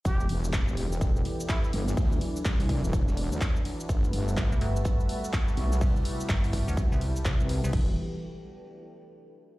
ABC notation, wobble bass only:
X:1
M:4/4
L:1/16
Q:"Swing 16ths" 1/4=125
K:Em
V:1 name="Wobble bass" clef=bass
E,,,2 E,,,3 G,,, E,,,4 z4 G,,,2 | D,,2 z2 C,,3 E,,,4 D,, z4 | G,,,2 G,,,3 z8 z B,,,2 | z12 C,, C,,2 z |
E,,,2 z12 z2 |]